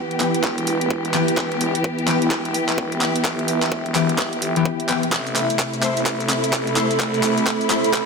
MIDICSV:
0, 0, Header, 1, 6, 480
1, 0, Start_track
1, 0, Key_signature, 1, "minor"
1, 0, Tempo, 468750
1, 1407, Time_signature, 4, 2, 24, 8
1, 8249, End_track
2, 0, Start_track
2, 0, Title_t, "Ambient pad"
2, 0, Program_c, 0, 92
2, 0, Note_on_c, 0, 64, 75
2, 0, Note_on_c, 0, 71, 87
2, 0, Note_on_c, 0, 78, 80
2, 1304, Note_on_c, 0, 76, 78
2, 1426, Note_off_c, 0, 78, 0
2, 5248, Note_on_c, 0, 69, 79
2, 5779, Note_on_c, 0, 83, 97
2, 6663, Note_off_c, 0, 71, 0
2, 6979, Note_off_c, 0, 64, 0
2, 8249, Note_off_c, 0, 69, 0
2, 8249, Note_off_c, 0, 76, 0
2, 8249, Note_off_c, 0, 83, 0
2, 8249, End_track
3, 0, Start_track
3, 0, Title_t, "Synth stab"
3, 0, Program_c, 1, 62
3, 207, Note_on_c, 1, 59, 67
3, 207, Note_on_c, 1, 67, 82
3, 208, Note_on_c, 1, 52, 76
3, 358, Note_off_c, 1, 52, 0
3, 358, Note_off_c, 1, 59, 0
3, 358, Note_off_c, 1, 67, 0
3, 1167, Note_on_c, 1, 52, 81
3, 1167, Note_on_c, 1, 59, 76
3, 1167, Note_on_c, 1, 67, 89
3, 1318, Note_off_c, 1, 52, 0
3, 1318, Note_off_c, 1, 59, 0
3, 1318, Note_off_c, 1, 67, 0
3, 2128, Note_on_c, 1, 52, 81
3, 2128, Note_on_c, 1, 59, 70
3, 2128, Note_on_c, 1, 67, 86
3, 2278, Note_off_c, 1, 52, 0
3, 2278, Note_off_c, 1, 59, 0
3, 2278, Note_off_c, 1, 67, 0
3, 4046, Note_on_c, 1, 52, 76
3, 4046, Note_on_c, 1, 59, 68
3, 4046, Note_on_c, 1, 67, 82
3, 4198, Note_off_c, 1, 52, 0
3, 4198, Note_off_c, 1, 59, 0
3, 4198, Note_off_c, 1, 67, 0
3, 4673, Note_on_c, 1, 52, 84
3, 4673, Note_on_c, 1, 67, 92
3, 4674, Note_on_c, 1, 59, 81
3, 4774, Note_off_c, 1, 52, 0
3, 4774, Note_off_c, 1, 59, 0
3, 4774, Note_off_c, 1, 67, 0
3, 5006, Note_on_c, 1, 52, 77
3, 5006, Note_on_c, 1, 67, 82
3, 5007, Note_on_c, 1, 59, 72
3, 5158, Note_off_c, 1, 52, 0
3, 5158, Note_off_c, 1, 59, 0
3, 5158, Note_off_c, 1, 67, 0
3, 5967, Note_on_c, 1, 57, 70
3, 5967, Note_on_c, 1, 64, 67
3, 5967, Note_on_c, 1, 72, 80
3, 6118, Note_off_c, 1, 57, 0
3, 6118, Note_off_c, 1, 64, 0
3, 6118, Note_off_c, 1, 72, 0
3, 6926, Note_on_c, 1, 57, 76
3, 6926, Note_on_c, 1, 64, 70
3, 6927, Note_on_c, 1, 72, 84
3, 7078, Note_off_c, 1, 57, 0
3, 7078, Note_off_c, 1, 64, 0
3, 7078, Note_off_c, 1, 72, 0
3, 7886, Note_on_c, 1, 57, 74
3, 7886, Note_on_c, 1, 64, 70
3, 7886, Note_on_c, 1, 72, 83
3, 8037, Note_off_c, 1, 57, 0
3, 8037, Note_off_c, 1, 64, 0
3, 8037, Note_off_c, 1, 72, 0
3, 8249, End_track
4, 0, Start_track
4, 0, Title_t, "String section"
4, 0, Program_c, 2, 48
4, 0, Note_on_c, 2, 52, 78
4, 0, Note_on_c, 2, 59, 72
4, 0, Note_on_c, 2, 67, 84
4, 5206, Note_off_c, 2, 52, 0
4, 5206, Note_off_c, 2, 59, 0
4, 5206, Note_off_c, 2, 67, 0
4, 5247, Note_on_c, 2, 48, 84
4, 5248, Note_on_c, 2, 57, 74
4, 5248, Note_on_c, 2, 64, 89
4, 8249, Note_off_c, 2, 48, 0
4, 8249, Note_off_c, 2, 57, 0
4, 8249, Note_off_c, 2, 64, 0
4, 8249, End_track
5, 0, Start_track
5, 0, Title_t, "FM bass"
5, 0, Program_c, 3, 39
5, 447, Note_on_c, 3, 28, 100
5, 810, Note_off_c, 3, 28, 0
5, 834, Note_on_c, 3, 28, 98
5, 1152, Note_off_c, 3, 28, 0
5, 1407, Note_on_c, 3, 28, 92
5, 1770, Note_off_c, 3, 28, 0
5, 2273, Note_on_c, 3, 28, 101
5, 2592, Note_off_c, 3, 28, 0
5, 2846, Note_on_c, 3, 28, 94
5, 3072, Note_off_c, 3, 28, 0
5, 3326, Note_on_c, 3, 31, 95
5, 3792, Note_off_c, 3, 31, 0
5, 3806, Note_on_c, 3, 28, 97
5, 4032, Note_off_c, 3, 28, 0
5, 4046, Note_on_c, 3, 28, 99
5, 4410, Note_off_c, 3, 28, 0
5, 4433, Note_on_c, 3, 31, 95
5, 4751, Note_off_c, 3, 31, 0
5, 5246, Note_on_c, 3, 33, 95
5, 5610, Note_off_c, 3, 33, 0
5, 6113, Note_on_c, 3, 33, 97
5, 6431, Note_off_c, 3, 33, 0
5, 6686, Note_on_c, 3, 33, 94
5, 6912, Note_off_c, 3, 33, 0
5, 7166, Note_on_c, 3, 36, 99
5, 7632, Note_off_c, 3, 36, 0
5, 8126, Note_on_c, 3, 33, 96
5, 8249, Note_off_c, 3, 33, 0
5, 8249, End_track
6, 0, Start_track
6, 0, Title_t, "Drums"
6, 113, Note_on_c, 9, 42, 37
6, 206, Note_on_c, 9, 39, 53
6, 206, Note_on_c, 9, 46, 97
6, 216, Note_off_c, 9, 42, 0
6, 309, Note_off_c, 9, 39, 0
6, 309, Note_off_c, 9, 46, 0
6, 353, Note_on_c, 9, 42, 69
6, 447, Note_on_c, 9, 36, 118
6, 447, Note_on_c, 9, 39, 54
6, 456, Note_off_c, 9, 42, 0
6, 549, Note_off_c, 9, 36, 0
6, 549, Note_off_c, 9, 39, 0
6, 593, Note_on_c, 9, 42, 52
6, 686, Note_on_c, 9, 46, 106
6, 696, Note_off_c, 9, 42, 0
6, 789, Note_off_c, 9, 46, 0
6, 833, Note_on_c, 9, 42, 66
6, 927, Note_on_c, 9, 36, 123
6, 936, Note_off_c, 9, 42, 0
6, 1029, Note_off_c, 9, 36, 0
6, 1074, Note_on_c, 9, 42, 51
6, 1166, Note_on_c, 9, 39, 58
6, 1166, Note_on_c, 9, 46, 92
6, 1176, Note_off_c, 9, 42, 0
6, 1269, Note_off_c, 9, 39, 0
6, 1269, Note_off_c, 9, 46, 0
6, 1313, Note_on_c, 9, 42, 65
6, 1406, Note_on_c, 9, 39, 58
6, 1407, Note_on_c, 9, 36, 122
6, 1415, Note_off_c, 9, 42, 0
6, 1508, Note_off_c, 9, 39, 0
6, 1509, Note_off_c, 9, 36, 0
6, 1553, Note_on_c, 9, 42, 37
6, 1646, Note_on_c, 9, 46, 108
6, 1655, Note_off_c, 9, 42, 0
6, 1748, Note_off_c, 9, 46, 0
6, 1792, Note_on_c, 9, 42, 64
6, 1887, Note_on_c, 9, 36, 127
6, 1895, Note_off_c, 9, 42, 0
6, 1989, Note_off_c, 9, 36, 0
6, 2033, Note_on_c, 9, 42, 35
6, 2126, Note_on_c, 9, 39, 63
6, 2126, Note_on_c, 9, 46, 94
6, 2135, Note_off_c, 9, 42, 0
6, 2228, Note_off_c, 9, 39, 0
6, 2228, Note_off_c, 9, 46, 0
6, 2272, Note_on_c, 9, 42, 64
6, 2365, Note_on_c, 9, 39, 61
6, 2366, Note_on_c, 9, 36, 124
6, 2375, Note_off_c, 9, 42, 0
6, 2468, Note_off_c, 9, 39, 0
6, 2469, Note_off_c, 9, 36, 0
6, 2512, Note_on_c, 9, 42, 51
6, 2605, Note_on_c, 9, 46, 108
6, 2614, Note_off_c, 9, 42, 0
6, 2707, Note_off_c, 9, 46, 0
6, 2751, Note_on_c, 9, 39, 54
6, 2751, Note_on_c, 9, 42, 60
6, 2846, Note_on_c, 9, 36, 123
6, 2854, Note_off_c, 9, 39, 0
6, 2854, Note_off_c, 9, 42, 0
6, 2949, Note_off_c, 9, 36, 0
6, 2991, Note_on_c, 9, 42, 51
6, 3085, Note_on_c, 9, 39, 65
6, 3085, Note_on_c, 9, 46, 91
6, 3094, Note_off_c, 9, 42, 0
6, 3187, Note_off_c, 9, 39, 0
6, 3187, Note_off_c, 9, 46, 0
6, 3232, Note_on_c, 9, 42, 63
6, 3324, Note_on_c, 9, 39, 65
6, 3326, Note_on_c, 9, 36, 120
6, 3334, Note_off_c, 9, 42, 0
6, 3427, Note_off_c, 9, 39, 0
6, 3429, Note_off_c, 9, 36, 0
6, 3472, Note_on_c, 9, 42, 35
6, 3564, Note_on_c, 9, 46, 110
6, 3574, Note_off_c, 9, 42, 0
6, 3666, Note_off_c, 9, 46, 0
6, 3711, Note_on_c, 9, 39, 59
6, 3711, Note_on_c, 9, 42, 61
6, 3806, Note_on_c, 9, 36, 123
6, 3813, Note_off_c, 9, 39, 0
6, 3813, Note_off_c, 9, 42, 0
6, 3909, Note_off_c, 9, 36, 0
6, 3952, Note_on_c, 9, 42, 34
6, 4045, Note_on_c, 9, 39, 71
6, 4045, Note_on_c, 9, 46, 94
6, 4054, Note_off_c, 9, 42, 0
6, 4148, Note_off_c, 9, 39, 0
6, 4148, Note_off_c, 9, 46, 0
6, 4192, Note_on_c, 9, 42, 64
6, 4285, Note_on_c, 9, 39, 68
6, 4286, Note_on_c, 9, 36, 126
6, 4294, Note_off_c, 9, 42, 0
6, 4387, Note_off_c, 9, 39, 0
6, 4389, Note_off_c, 9, 36, 0
6, 4432, Note_on_c, 9, 42, 48
6, 4525, Note_on_c, 9, 46, 106
6, 4534, Note_off_c, 9, 42, 0
6, 4628, Note_off_c, 9, 46, 0
6, 4672, Note_on_c, 9, 42, 62
6, 4766, Note_on_c, 9, 36, 122
6, 4775, Note_off_c, 9, 42, 0
6, 4869, Note_off_c, 9, 36, 0
6, 4913, Note_on_c, 9, 42, 49
6, 5006, Note_on_c, 9, 39, 72
6, 5006, Note_on_c, 9, 46, 93
6, 5015, Note_off_c, 9, 42, 0
6, 5108, Note_off_c, 9, 39, 0
6, 5108, Note_off_c, 9, 46, 0
6, 5153, Note_on_c, 9, 42, 61
6, 5246, Note_on_c, 9, 36, 121
6, 5246, Note_on_c, 9, 39, 75
6, 5246, Note_on_c, 9, 82, 47
6, 5256, Note_off_c, 9, 42, 0
6, 5348, Note_off_c, 9, 36, 0
6, 5348, Note_off_c, 9, 39, 0
6, 5349, Note_off_c, 9, 82, 0
6, 5392, Note_on_c, 9, 42, 37
6, 5393, Note_on_c, 9, 82, 23
6, 5486, Note_off_c, 9, 82, 0
6, 5486, Note_on_c, 9, 39, 73
6, 5486, Note_on_c, 9, 46, 106
6, 5486, Note_on_c, 9, 82, 78
6, 5495, Note_off_c, 9, 42, 0
6, 5588, Note_off_c, 9, 39, 0
6, 5588, Note_off_c, 9, 46, 0
6, 5589, Note_off_c, 9, 82, 0
6, 5633, Note_on_c, 9, 42, 62
6, 5633, Note_on_c, 9, 82, 34
6, 5726, Note_off_c, 9, 82, 0
6, 5726, Note_on_c, 9, 36, 118
6, 5726, Note_on_c, 9, 39, 76
6, 5726, Note_on_c, 9, 82, 45
6, 5735, Note_off_c, 9, 42, 0
6, 5829, Note_off_c, 9, 36, 0
6, 5829, Note_off_c, 9, 39, 0
6, 5829, Note_off_c, 9, 82, 0
6, 5873, Note_on_c, 9, 42, 37
6, 5873, Note_on_c, 9, 82, 22
6, 5966, Note_off_c, 9, 82, 0
6, 5966, Note_on_c, 9, 39, 78
6, 5966, Note_on_c, 9, 46, 90
6, 5966, Note_on_c, 9, 82, 78
6, 5975, Note_off_c, 9, 42, 0
6, 6068, Note_off_c, 9, 39, 0
6, 6068, Note_off_c, 9, 46, 0
6, 6069, Note_off_c, 9, 82, 0
6, 6113, Note_on_c, 9, 42, 67
6, 6113, Note_on_c, 9, 82, 34
6, 6206, Note_off_c, 9, 82, 0
6, 6206, Note_on_c, 9, 36, 115
6, 6206, Note_on_c, 9, 39, 78
6, 6206, Note_on_c, 9, 82, 46
6, 6215, Note_off_c, 9, 42, 0
6, 6309, Note_off_c, 9, 36, 0
6, 6309, Note_off_c, 9, 39, 0
6, 6309, Note_off_c, 9, 82, 0
6, 6353, Note_on_c, 9, 42, 53
6, 6354, Note_on_c, 9, 82, 23
6, 6446, Note_off_c, 9, 82, 0
6, 6446, Note_on_c, 9, 39, 75
6, 6446, Note_on_c, 9, 46, 109
6, 6446, Note_on_c, 9, 82, 77
6, 6456, Note_off_c, 9, 42, 0
6, 6548, Note_off_c, 9, 39, 0
6, 6548, Note_off_c, 9, 46, 0
6, 6549, Note_off_c, 9, 82, 0
6, 6593, Note_on_c, 9, 42, 63
6, 6593, Note_on_c, 9, 82, 34
6, 6686, Note_on_c, 9, 36, 122
6, 6687, Note_off_c, 9, 82, 0
6, 6687, Note_on_c, 9, 39, 78
6, 6687, Note_on_c, 9, 82, 46
6, 6695, Note_off_c, 9, 42, 0
6, 6789, Note_off_c, 9, 36, 0
6, 6789, Note_off_c, 9, 39, 0
6, 6789, Note_off_c, 9, 82, 0
6, 6833, Note_on_c, 9, 42, 50
6, 6833, Note_on_c, 9, 82, 22
6, 6926, Note_off_c, 9, 82, 0
6, 6926, Note_on_c, 9, 39, 83
6, 6926, Note_on_c, 9, 46, 93
6, 6926, Note_on_c, 9, 82, 78
6, 6936, Note_off_c, 9, 42, 0
6, 7028, Note_off_c, 9, 39, 0
6, 7028, Note_off_c, 9, 46, 0
6, 7029, Note_off_c, 9, 82, 0
6, 7073, Note_on_c, 9, 42, 63
6, 7073, Note_on_c, 9, 82, 34
6, 7166, Note_off_c, 9, 82, 0
6, 7166, Note_on_c, 9, 36, 115
6, 7166, Note_on_c, 9, 39, 82
6, 7166, Note_on_c, 9, 82, 50
6, 7175, Note_off_c, 9, 42, 0
6, 7268, Note_off_c, 9, 39, 0
6, 7269, Note_off_c, 9, 36, 0
6, 7269, Note_off_c, 9, 82, 0
6, 7313, Note_on_c, 9, 42, 38
6, 7314, Note_on_c, 9, 82, 24
6, 7406, Note_off_c, 9, 82, 0
6, 7406, Note_on_c, 9, 39, 86
6, 7406, Note_on_c, 9, 46, 103
6, 7406, Note_on_c, 9, 82, 82
6, 7416, Note_off_c, 9, 42, 0
6, 7508, Note_off_c, 9, 39, 0
6, 7508, Note_off_c, 9, 46, 0
6, 7508, Note_off_c, 9, 82, 0
6, 7553, Note_on_c, 9, 42, 67
6, 7553, Note_on_c, 9, 82, 35
6, 7646, Note_on_c, 9, 36, 117
6, 7646, Note_on_c, 9, 39, 85
6, 7647, Note_off_c, 9, 82, 0
6, 7647, Note_on_c, 9, 82, 47
6, 7655, Note_off_c, 9, 42, 0
6, 7749, Note_off_c, 9, 36, 0
6, 7749, Note_off_c, 9, 39, 0
6, 7749, Note_off_c, 9, 82, 0
6, 7793, Note_on_c, 9, 42, 37
6, 7793, Note_on_c, 9, 82, 23
6, 7886, Note_off_c, 9, 82, 0
6, 7886, Note_on_c, 9, 39, 85
6, 7886, Note_on_c, 9, 46, 91
6, 7886, Note_on_c, 9, 82, 82
6, 7895, Note_off_c, 9, 42, 0
6, 7988, Note_off_c, 9, 39, 0
6, 7988, Note_off_c, 9, 46, 0
6, 7988, Note_off_c, 9, 82, 0
6, 8032, Note_on_c, 9, 42, 66
6, 8033, Note_on_c, 9, 82, 35
6, 8126, Note_off_c, 9, 82, 0
6, 8126, Note_on_c, 9, 36, 120
6, 8126, Note_on_c, 9, 39, 89
6, 8126, Note_on_c, 9, 82, 47
6, 8135, Note_off_c, 9, 42, 0
6, 8228, Note_off_c, 9, 39, 0
6, 8229, Note_off_c, 9, 36, 0
6, 8229, Note_off_c, 9, 82, 0
6, 8249, End_track
0, 0, End_of_file